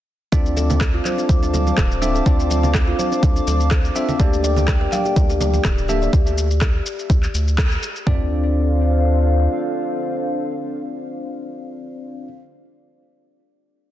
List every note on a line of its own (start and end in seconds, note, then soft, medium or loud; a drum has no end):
0.32 1.00 D2 loud
0.32 1.99 C4 medium
0.32 1.99 D4 medium
0.32 0.44 D4 medium
0.32 1.99 F4 medium
0.32 1.99 A4 medium
0.32 4.16 C5 medium
0.32 1.99 D5 loud
0.32 4.16 F5 medium
0.32 6.09 A5 medium
0.32 6.09 D6 medium
0.32 kick loud
0.32 muted conga medium
0.32 shaker medium
0.46 shaker soft
0.56 0.69 A4 medium
0.56 muted conga soft
0.56 high conga medium
0.56 shaker medium
0.70 0.80 D4 medium
0.70 low conga loud
0.70 shaker soft
0.81 0.93 A4 loud
0.81 kick loud
0.81 cross-stick loud
0.81 clap loud
0.81 muted conga medium
0.81 shaker medium
0.94 1.00 F4 medium
1.05 1.17 C5 medium
1.05 clap soft
1.05 high conga loud
1.05 shaker medium
1.18 1.28 D4 medium
1.18 muted conga soft
1.18 shaker soft
1.29 1.72 D2 medium
1.29 kick loud
1.29 high conga loud
1.29 shaker medium
1.43 1.52 D4 medium
1.43 muted conga medium
1.43 shaker soft
1.53 1.65 A4 medium
1.53 high conga medium
1.53 low conga loud
1.53 shaker medium
1.67 muted conga soft
1.67 high conga loud
1.67 shaker soft
1.78 2.21 D1 loud
1.78 kick loud
1.78 cross-stick loud
1.78 clap loud
1.78 low conga loud
1.78 shaker medium
1.91 shaker soft
2.02 2.23 C4 medium
2.02 2.09 D4 medium
2.02 2.23 D4 medium
2.02 2.23 F4 medium
2.02 2.23 A4 medium
2.02 2.23 E5 loud
2.02 muted conga medium
2.02 high conga medium
2.02 shaker medium
2.15 2.25 A4 medium
2.15 shaker soft
2.26 2.94 D2 loud
2.26 3.93 C4 loud
2.26 2.38 D4 medium
2.26 3.93 D4 medium
2.26 3.93 F4 medium
2.26 3.93 A4 medium
2.26 3.93 D5 loud
2.26 kick loud
2.26 muted conga medium
2.26 shaker medium
2.40 shaker soft
2.50 2.62 A4 medium
2.50 muted conga soft
2.50 high conga medium
2.50 shaker loud
2.63 2.74 D4 medium
2.63 low conga loud
2.63 shaker soft
2.74 2.86 A4 loud
2.74 kick loud
2.74 cross-stick loud
2.74 clap loud
2.74 muted conga medium
2.74 shaker medium
2.88 2.94 F4 medium
2.99 3.10 C5 medium
2.99 high conga loud
2.99 shaker loud
3.12 3.22 D4 medium
3.12 muted conga soft
3.12 shaker soft
3.23 3.41 D2 medium
3.23 kick loud
3.23 high conga loud
3.23 low conga loud
3.23 shaker medium
3.36 3.46 D4 medium
3.36 muted conga medium
3.36 shaker soft
3.47 3.90 D2 loud
3.47 3.59 A4 medium
3.47 high conga medium
3.47 shaker loud
3.60 muted conga soft
3.60 shaker soft
3.71 kick loud
3.71 cross-stick loud
3.71 clap loud
3.71 shaker medium
3.85 shaker soft
3.95 4.17 C4 medium
3.95 4.03 D4 medium
3.95 4.17 D4 medium
3.95 4.17 F4 medium
3.95 4.17 A4 medium
3.95 4.17 E5 loud
3.95 muted conga medium
3.95 shaker loud
4.08 4.19 A4 medium
4.08 low conga medium
4.08 shaker soft
4.20 4.87 D2 loud
4.20 6.11 A#3 medium
4.20 5.86 A#3 medium
4.20 5.86 D4 medium
4.20 4.31 G4 medium
4.20 5.86 G4 medium
4.20 5.86 A4 medium
4.20 5.86 D5 loud
4.20 6.11 G5 medium
4.20 kick loud
4.20 muted conga medium
4.20 shaker medium
4.33 shaker soft
4.43 4.56 D5 medium
4.43 muted conga soft
4.43 high conga medium
4.43 shaker loud
4.56 4.67 G4 medium
4.56 low conga loud
4.56 shaker soft
4.68 4.80 D5 loud
4.68 kick loud
4.68 cross-stick loud
4.68 clap loud
4.68 muted conga soft
4.68 shaker medium
4.81 4.87 A#4 medium
4.92 5.04 F5 medium
4.92 clap soft
4.92 high conga loud
4.92 shaker loud
5.05 5.15 G4 medium
5.05 muted conga soft
5.05 shaker soft
5.16 5.60 D2 medium
5.16 kick loud
5.16 high conga loud
5.16 shaker medium
5.30 5.39 G4 medium
5.30 muted conga medium
5.30 shaker soft
5.41 5.52 D5 medium
5.41 high conga loud
5.41 low conga loud
5.41 shaker loud
5.53 muted conga soft
5.53 high conga loud
5.53 shaker soft
5.65 6.08 D1 loud
5.65 kick loud
5.65 cross-stick loud
5.65 clap loud
5.65 low conga loud
5.65 shaker medium
5.78 shaker soft
5.88 6.10 A#3 loud
5.88 6.11 D4 medium
5.88 6.11 G4 medium
5.88 5.96 G4 medium
5.88 6.10 A4 medium
5.88 6.11 E5 loud
5.88 muted conga soft
5.88 high conga medium
5.88 shaker loud
6.02 6.12 D5 medium
6.02 shaker soft
6.13 6.81 D2 loud
6.13 kick loud
6.13 shaker medium
6.27 shaker soft
6.38 shaker loud
6.51 shaker soft
6.61 kick loud
6.61 cross-stick loud
6.61 clap loud
6.61 shaker medium
6.86 shaker loud
6.99 shaker soft
7.10 7.28 D2 medium
7.10 kick loud
7.10 shaker medium
7.23 clap soft
7.23 shaker soft
7.34 7.77 D2 loud
7.34 shaker loud
7.48 shaker soft
7.58 kick loud
7.58 cross-stick loud
7.58 clap loud
7.58 shaker medium
7.72 shaker soft
7.83 shaker loud
7.96 shaker soft
8.07 9.48 D2 loud
8.07 12.27 C4 medium
8.07 12.27 D4 medium
8.07 8.29 D4 medium
8.07 12.27 F4 medium
8.07 12.27 A4 medium
8.07 12.27 C5 medium
8.07 12.27 D5 medium
8.07 12.27 F5 medium
8.07 kick loud
8.07 floor tom loud